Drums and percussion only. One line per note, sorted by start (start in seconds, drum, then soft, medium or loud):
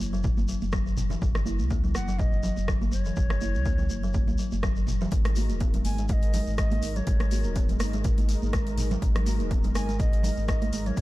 0.00 high conga medium
0.00 shekere medium
0.14 shekere soft
0.23 kick loud
0.23 mid tom medium
0.23 muted conga soft
0.23 high conga soft
0.23 shekere soft
0.37 high conga loud
0.37 shekere soft
0.48 shekere medium
0.61 muted conga soft
0.61 high conga medium
0.61 shekere soft
0.72 kick medium
0.72 cross-stick medium
0.72 shekere soft
0.87 shekere soft
0.97 mid tom medium
0.97 muted conga medium
0.97 low conga medium
0.97 shekere medium
1.10 low conga loud
1.10 shekere soft
1.22 kick loud
1.22 mid tom medium
1.22 shekere soft
1.35 cross-stick medium
1.35 muted conga medium
1.35 low conga loud
1.35 shekere soft
1.46 high conga medium
1.46 shekere medium
1.59 high conga medium
1.59 shekere soft
1.70 kick medium
1.70 muted conga soft
1.70 shekere medium
1.84 low conga medium
1.84 shekere soft
1.95 cross-stick medium
1.95 high conga medium
1.95 shekere medium
2.08 shekere soft
2.19 kick loud
2.19 mid tom medium
2.19 muted conga medium
2.19 shekere soft
2.32 shekere soft
2.43 low conga loud
2.43 shekere medium
2.57 muted conga soft
2.57 shekere soft
2.68 kick medium
2.68 cross-stick medium
2.68 shekere soft
2.82 high conga medium
2.82 shekere soft
2.92 muted conga soft
2.92 shekere medium
3.05 shekere soft
3.16 kick loud
3.16 mid tom medium
3.16 shekere soft
3.30 cross-stick medium
3.30 muted conga medium
3.30 low conga loud
3.30 shekere soft
3.41 high conga medium
3.41 shekere medium
3.55 high conga medium
3.55 shekere soft
3.65 kick medium
3.65 muted conga soft
3.65 shekere soft
3.78 low conga medium
3.78 shekere soft
3.89 high conga medium
3.89 shekere medium
4.04 shekere soft
4.14 kick loud
4.14 mid tom medium
4.14 muted conga soft
4.14 high conga medium
4.14 shekere soft
4.28 high conga medium
4.28 shekere soft
4.38 shekere medium
4.52 muted conga soft
4.52 high conga medium
4.52 shekere soft
4.63 kick loud
4.63 cross-stick medium
4.63 shekere soft
4.76 shekere soft
4.87 mid tom medium
4.87 muted conga soft
4.87 low conga medium
4.87 shekere medium
5.01 low conga loud
5.01 shekere soft
5.12 kick loud
5.12 closed hi-hat medium
5.12 mid tom medium
5.12 shekere soft
5.25 cross-stick medium
5.25 closed hi-hat soft
5.25 muted conga medium
5.25 low conga loud
5.25 shekere soft
5.36 open hi-hat medium
5.36 high conga medium
5.36 shekere medium
5.49 closed hi-hat soft
5.49 high conga medium
5.49 shekere soft
5.60 kick loud
5.60 closed hi-hat medium
5.60 muted conga soft
5.60 shekere soft
5.74 closed hi-hat soft
5.74 low conga medium
5.74 shekere soft
5.85 open hi-hat medium
5.85 high conga medium
5.85 shekere medium
5.98 closed hi-hat soft
5.98 shekere soft
6.08 kick loud
6.08 closed hi-hat medium
6.08 mid tom medium
6.08 muted conga medium
6.08 shekere soft
6.22 closed hi-hat soft
6.22 shekere soft
6.34 open hi-hat medium
6.34 low conga loud
6.34 shekere medium
6.47 muted conga soft
6.47 shekere soft
6.58 kick loud
6.58 cross-stick medium
6.58 closed hi-hat medium
6.58 shekere medium
6.71 closed hi-hat soft
6.71 high conga loud
6.71 shekere soft
6.83 open hi-hat medium
6.83 muted conga soft
6.83 shekere medium
6.96 closed hi-hat soft
6.96 shekere soft
7.07 kick loud
7.07 closed hi-hat medium
7.07 mid tom medium
7.07 shekere soft
7.20 cross-stick medium
7.20 closed hi-hat soft
7.20 muted conga medium
7.20 low conga loud
7.20 shekere soft
7.31 open hi-hat medium
7.31 high conga medium
7.31 shekere medium
7.44 closed hi-hat soft
7.44 high conga medium
7.44 shekere soft
7.56 kick loud
7.56 closed hi-hat medium
7.56 shekere medium
7.69 closed hi-hat soft
7.69 low conga medium
7.69 shekere soft
7.79 cross-stick medium
7.79 open hi-hat medium
7.79 high conga medium
7.79 shekere medium
7.93 closed hi-hat soft
7.93 shekere soft
8.04 kick loud
8.04 closed hi-hat medium
8.04 mid tom medium
8.04 muted conga medium
8.04 high conga medium
8.04 shekere medium
8.18 closed hi-hat soft
8.18 high conga loud
8.18 shekere soft
8.29 open hi-hat medium
8.29 shekere medium
8.42 muted conga soft
8.42 high conga medium
8.42 shekere soft
8.53 kick loud
8.53 cross-stick medium
8.53 closed hi-hat medium
8.53 shekere soft
8.67 closed hi-hat soft
8.67 shekere soft
8.78 open hi-hat medium
8.78 mid tom medium
8.78 muted conga soft
8.78 low conga medium
8.78 shekere loud
8.91 closed hi-hat soft
8.91 low conga loud
8.91 shekere soft
9.02 kick loud
9.02 closed hi-hat medium
9.02 mid tom medium
9.02 shekere medium
9.15 cross-stick medium
9.15 closed hi-hat soft
9.15 muted conga medium
9.15 low conga loud
9.15 shekere soft
9.26 open hi-hat medium
9.26 high conga medium
9.26 shekere loud
9.39 closed hi-hat soft
9.39 high conga medium
9.39 shekere soft
9.51 kick loud
9.51 closed hi-hat medium
9.51 muted conga soft
9.51 shekere medium
9.64 closed hi-hat soft
9.64 low conga medium
9.64 shekere soft
9.75 cross-stick medium
9.75 open hi-hat medium
9.75 high conga medium
9.75 shekere loud
9.89 closed hi-hat soft
9.89 shekere soft
9.99 kick loud
9.99 closed hi-hat medium
9.99 mid tom medium
9.99 muted conga soft
9.99 shekere medium
10.13 closed hi-hat soft
10.13 shekere soft
10.23 open hi-hat medium
10.23 low conga loud
10.23 shekere loud
10.37 muted conga soft
10.37 shekere soft
10.48 kick loud
10.48 cross-stick medium
10.48 closed hi-hat medium
10.48 shekere medium
10.62 closed hi-hat soft
10.62 high conga loud
10.62 shekere soft
10.73 open hi-hat medium
10.73 muted conga medium
10.73 shekere medium
10.86 closed hi-hat soft
10.86 shekere soft
10.97 kick loud
10.97 closed hi-hat medium
10.97 mid tom medium
10.97 shekere soft